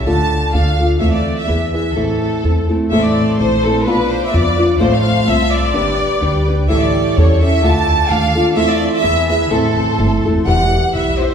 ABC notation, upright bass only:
X:1
M:2/4
L:1/8
Q:"Swing" 1/4=127
K:Am
V:1 name="Upright bass" clef=bass
D,,2 D,,2 | E,,2 E,,2 | A,,,2 E,,2 | A,,,2 _B,,,2 |
B,,,2 F,,2 | A,,,2 C,,2 | G,,,2 D,,2 | A,,,2 E,,2 |
D,,2 ^D,,2 | E,,2 E,,2 | A,,, A,,, G,,, E,,, | [K:Em] E,,,2 B,,,2 |]